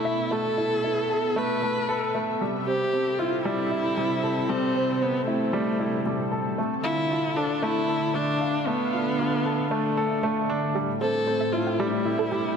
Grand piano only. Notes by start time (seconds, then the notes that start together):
Already playing: A3 E4 A4
0.05 E5
0.31 A3
0.58 E4
0.84 E4
1.10 A4
1.36 A3
1.62 A3
1.89 A4
2.15 A3
2.41 G3
2.68 C4
2.93 C4
3.19 E4
3.45 G3
3.71 E4
3.97 G3
4.24 A4
4.49 G3
4.75 C4
5.01 C4
5.27 E4
5.53 G3
5.80 E4
6.06 G3
6.32 A4
6.58 A3
6.84 F4
7.11 F4
7.37 A4
7.62 A3
7.89 A4
8.14 A3
8.41 F5
8.67 A3
8.93 F4
9.19 F4
9.46 A4
9.71 A3
9.97 A4
10.23 A3
10.50 D4
10.75 G3
11.01 C4
11.28 C4
11.53 E4
11.80 G3
12.06 E4
12.32 G3